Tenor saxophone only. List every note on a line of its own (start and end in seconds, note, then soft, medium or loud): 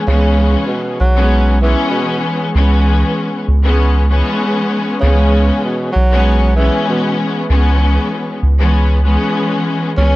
0.08 0.66 C#3 loud
0.67 0.96 B2 medium
1.00 1.58 F#3 medium
1.61 1.90 E3 medium
1.91 2.19 B2 medium
5.01 5.60 C#3 loud
5.64 5.92 B2 medium
5.93 6.52 F#3 medium
6.56 6.84 E3 medium
6.89 7.16 B2 medium
9.97 10.16 C#4 loud